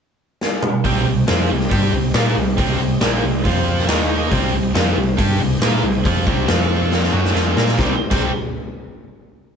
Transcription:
0.41 snare medium
0.63 mid tom medium
0.84 1.05 C2 medium
0.84 1.05 C3 medium
0.84 1.06 G3 loud
0.84 1.06 C4 loud
0.84 3.43 C4 medium
0.84 3.43 G4 medium
0.84 3.43 D#5 medium
0.84 kick medium
0.84 open hi-hat medium
1.07 1.27 C2 medium
1.07 1.24 C3 medium
1.07 1.24 G3 medium
1.28 1.49 F2 medium
1.28 1.49 F3 medium
1.28 1.49 C4 medium
1.28 1.50 F4 loud
1.28 snare loud
1.28 open hi-hat medium
1.51 1.71 C2 medium
1.51 1.67 C3 medium
1.51 1.68 G3 medium
1.60 snare soft
1.70 1.92 G2 medium
1.70 1.92 G3 medium
1.70 1.92 D4 medium
1.70 1.93 G4 loud
1.70 kick loud
1.70 open hi-hat medium
1.92 2.13 C2 medium
1.92 2.10 C3 medium
1.92 2.10 G3 medium
2.14 2.34 A#2 medium
2.14 2.36 A#3 medium
2.14 2.36 F4 loud
2.14 2.36 A#4 loud
2.14 snare loud
2.14 open hi-hat medium
2.36 2.57 C2 medium
2.36 2.53 C3 medium
2.36 2.54 G3 medium
2.57 2.79 C2 medium
2.57 2.78 C3 medium
2.57 2.78 G3 loud
2.57 2.79 C4 loud
2.57 kick loud
2.57 open hi-hat medium
2.79 3.00 C2 medium
2.79 2.97 C3 medium
2.79 2.97 G3 medium
3.01 3.22 A#1 loud
3.01 3.22 A#2 medium
3.01 3.22 F3 medium
3.01 3.23 A#3 loud
3.01 snare loud
3.01 open hi-hat medium
3.22 3.44 C2 medium
3.22 3.40 C3 medium
3.22 3.40 G3 medium
3.44 3.86 F2 medium
3.44 3.87 F3 medium
3.44 3.88 C4 medium
3.44 3.88 F4 medium
3.44 3.88 F4 loud
3.44 3.88 F5 medium
3.44 kick loud
3.44 open hi-hat medium
3.79 snare soft
3.87 4.28 D#2 medium
3.87 4.31 D#3 medium
3.87 4.31 A#3 medium
3.87 4.31 A#3 loud
3.87 4.31 D#4 medium
3.87 4.31 D#4 loud
3.87 4.31 D#5 medium
3.87 snare loud
3.87 open hi-hat medium
4.31 4.52 C2 medium
4.31 4.52 C3 loud
4.31 4.53 G3 loud
4.31 4.54 C4 loud
4.31 6.48 C4 medium
4.31 6.48 G4 medium
4.31 6.48 D#5 medium
4.31 kick loud
4.31 open hi-hat medium
4.53 4.74 C2 medium
4.53 4.71 C3 medium
4.53 4.71 G3 medium
4.75 4.96 F2 medium
4.75 4.96 F3 medium
4.75 4.96 C4 loud
4.75 4.97 F4 loud
4.75 snare loud
4.75 open hi-hat medium
4.96 5.17 C2 medium
4.96 5.14 C3 medium
4.96 5.14 G3 medium
5.17 5.39 G2 medium
5.17 5.39 G3 medium
5.17 5.39 D4 medium
5.17 5.40 G4 medium
5.17 kick loud
5.17 open hi-hat medium
5.39 5.60 C2 medium
5.39 5.58 C3 medium
5.39 5.58 G3 medium
5.61 5.82 A#2 medium
5.61 5.84 A#3 medium
5.61 5.84 F4 loud
5.61 5.84 A#4 loud
5.61 snare loud
5.61 open hi-hat medium
5.83 6.04 C2 medium
5.83 6.01 C3 medium
5.83 6.02 G3 medium
6.05 6.26 F2 medium
6.05 6.26 F3 medium
6.05 6.27 C4 loud
6.05 6.27 F4 medium
6.05 kick loud
6.05 open hi-hat medium
6.26 6.48 C2 medium
6.26 6.47 C3 medium
6.26 6.47 G3 medium
6.26 6.47 C4 loud
6.26 kick loud
6.47 7.10 F2 loud
6.47 7.12 F3 medium
6.47 7.13 C4 loud
6.47 7.11 C4 medium
6.47 7.13 F4 loud
6.47 7.14 F4 medium
6.47 7.14 F5 medium
6.47 snare loud
6.47 open hi-hat medium
6.92 snare medium
7.04 snare medium
7.12 7.34 F#2 medium
7.12 7.33 F#3 medium
7.12 7.78 C4 medium
7.12 7.33 C#4 medium
7.12 7.33 F#4 medium
7.12 7.78 G4 medium
7.12 7.77 D#5 medium
7.25 snare medium
7.33 7.56 F2 medium
7.33 7.56 F3 medium
7.33 7.55 C4 medium
7.33 7.55 F4 loud
7.33 snare medium
7.56 7.77 A#2 medium
7.56 7.78 A#3 medium
7.56 7.78 F4 medium
7.56 7.78 A#4 medium
7.56 snare medium
7.68 snare medium
7.78 7.91 C2 medium
7.78 7.92 C3 medium
7.78 7.92 D#3 loud
7.78 7.93 G3 medium
7.78 8.09 C4 medium
7.78 7.93 C4 loud
7.78 8.09 G4 medium
7.78 7.93 G4 loud
7.78 8.09 D#5 medium
7.78 kick loud
7.78 snare medium
8.11 8.32 C2 medium
8.11 8.29 C3 loud
8.11 8.29 D#3 loud
8.11 8.29 G3 loud
8.11 8.29 C4 loud
8.11 8.29 G4 loud
8.11 kick loud
8.11 crash medium

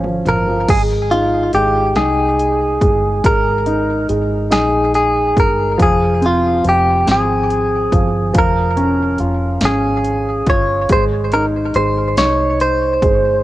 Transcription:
0.00 0.22 G#1 medium
0.00 0.06 F3 medium
0.00 0.22 C#4 medium
0.00 0.64 C#4 medium
0.04 0.25 F3 soft
0.04 mid tom medium
0.26 0.66 G1 medium
0.26 0.46 F3 medium
0.26 0.70 A#4 medium
0.26 closed hi-hat soft
0.26 mid tom medium
0.48 0.68 F3 soft
0.69 1.50 G#1 loud
0.69 1.53 G#3 medium
0.69 0.81 G#4 loud
0.69 kick loud
0.69 closed hi-hat loud
0.69 crash medium
1.11 1.95 D#4 medium
1.11 1.51 F4 medium
1.11 closed hi-hat soft
1.53 1.94 G#1 loud
1.53 2.80 G#3 medium
1.53 1.96 G4 medium
1.53 closed hi-hat soft
1.96 2.77 C2 loud
1.96 3.63 D#4 medium
1.96 3.26 G#4 loud
1.96 snare loud
1.96 closed hi-hat loud
2.39 closed hi-hat medium
2.81 3.22 G1 medium
2.81 3.24 G#3 medium
2.81 kick medium
2.81 closed hi-hat medium
3.24 4.05 G#1 loud
3.24 4.08 G#3 medium
3.24 4.06 A#4 medium
3.24 kick loud
3.24 closed hi-hat medium
3.66 4.49 D#4 medium
3.66 closed hi-hat medium
4.09 4.50 G#1 loud
4.09 5.35 G#3 medium
4.09 closed hi-hat medium
4.50 5.33 A#1 loud
4.50 5.75 D#4 medium
4.50 4.92 G#4 loud
4.50 snare loud
4.50 closed hi-hat medium
4.94 5.39 G#4 medium
4.94 closed hi-hat medium
5.36 5.77 G1 medium
5.36 5.78 G#3 medium
5.36 5.82 A#4 loud
5.36 kick medium
5.36 closed hi-hat medium
5.78 6.61 F1 loud
5.78 6.63 F3 medium
5.78 kick loud
5.78 closed hi-hat loud
5.82 6.25 G#4 loud
6.21 7.05 C4 medium
6.21 closed hi-hat medium
6.26 6.64 F4 medium
6.64 7.05 F1 loud
6.64 7.91 F3 medium
6.64 closed hi-hat medium
6.69 7.06 G4 medium
7.06 7.89 G#1 loud
7.06 8.30 C4 medium
7.06 snare loud
7.06 closed hi-hat loud
7.11 8.38 G#4 loud
7.50 closed hi-hat medium
7.92 8.32 G1 medium
7.92 8.32 F3 medium
7.92 kick medium
7.92 closed hi-hat medium
8.34 9.16 F1 loud
8.34 10.85 F3 medium
8.34 kick loud
8.34 closed hi-hat medium
8.39 9.18 A#4 medium
8.77 9.62 C#4 medium
8.77 closed hi-hat soft
9.18 9.60 F1 medium
9.18 10.47 F4 medium
9.18 closed hi-hat medium
9.61 10.43 G#1 medium
9.61 10.86 C#4 medium
9.61 snare loud
9.61 closed hi-hat loud
9.65 10.49 G#4 loud
10.04 closed hi-hat medium
10.47 10.87 G1 medium
10.47 10.89 F4 medium
10.47 10.88 C#5 medium
10.47 kick medium
10.47 closed hi-hat medium
10.89 11.71 G#1 loud
10.89 11.74 G#3 medium
10.89 11.04 C5 loud
10.89 kick loud
10.89 closed hi-hat medium
11.32 12.17 D#4 medium
11.32 11.45 A#4 medium
11.32 closed hi-hat medium
11.74 12.15 G#1 loud
11.74 13.01 G#3 medium
11.74 12.17 C5 loud
11.74 closed hi-hat medium
12.17 12.98 C2 loud
12.17 13.43 D#4 medium
12.17 12.61 C#5 loud
12.17 snare loud
12.17 closed hi-hat medium
12.60 13.43 C5 loud
12.60 closed hi-hat medium
13.02 13.42 G1 medium
13.02 13.43 G#3 medium
13.02 kick loud
13.02 closed hi-hat medium

